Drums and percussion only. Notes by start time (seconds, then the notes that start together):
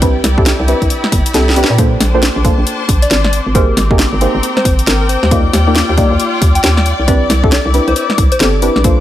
0.02 kick, closed hi-hat
0.24 snare, open hi-hat
0.38 kick
0.46 snare, closed hi-hat
0.68 open hi-hat
0.82 kick, closed hi-hat
0.90 closed hi-hat
1.04 snare
1.12 kick, open hi-hat
1.26 closed hi-hat
1.34 snare, closed hi-hat
1.49 snare
1.56 open hi-hat
1.64 snare
1.78 kick, closed hi-hat
2.00 snare, open hi-hat
2.23 snare, closed hi-hat
2.45 kick, open hi-hat
2.67 closed hi-hat
2.89 kick, open hi-hat
3.02 closed hi-hat
3.11 snare, closed hi-hat
3.24 snare
3.33 open hi-hat
3.55 kick, closed hi-hat
3.77 snare, open hi-hat
3.91 kick
3.99 snare, closed hi-hat
4.21 open hi-hat
4.43 closed hi-hat
4.57 snare
4.65 kick, open hi-hat
4.79 closed hi-hat
4.87 snare, closed hi-hat
5.09 open hi-hat
5.23 snare
5.31 kick, closed hi-hat
5.53 snare, open hi-hat
5.75 snare, closed hi-hat
5.98 kick, open hi-hat
6.20 closed hi-hat
6.42 kick, open hi-hat
6.55 closed hi-hat
6.64 snare, closed hi-hat
6.77 snare
6.86 open hi-hat
7.08 kick, closed hi-hat
7.30 snare, open hi-hat
7.44 kick
7.52 snare, closed hi-hat
7.74 open hi-hat
7.88 closed hi-hat
7.96 closed hi-hat
8.10 snare
8.18 kick, open hi-hat
8.32 closed hi-hat
8.40 snare, closed hi-hat
8.62 open hi-hat
8.76 snare
8.84 kick, closed hi-hat